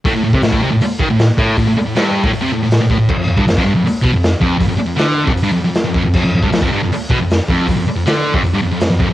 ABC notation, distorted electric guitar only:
X:1
M:4/4
L:1/16
Q:1/4=157
K:Flyd
V:1 name="Distorted electric guitar" clef=bass
A,, A,, A,, C, A,, A,, C, A,, z2 ^D, A,,2 z A,,2 | A,, A,, z A,, G,,3 A,, A,, C, A,, A,,2 A,, A,, A,, | F,, F,, F,, G,, F,, F,, G,, F,, z2 B,, F,,2 z F,,2 | F,, F,, z F,, D,3 F,, F,, G,, F,, F,,2 F,, F,, F,, |
F,, F,, F,, G,, F,, F,, G,, F,, z2 B,, F,,2 z F,,2 | F,, F,, z F,, D,3 F,, F,, G,, F,, F,,2 F,, F,, F,, |]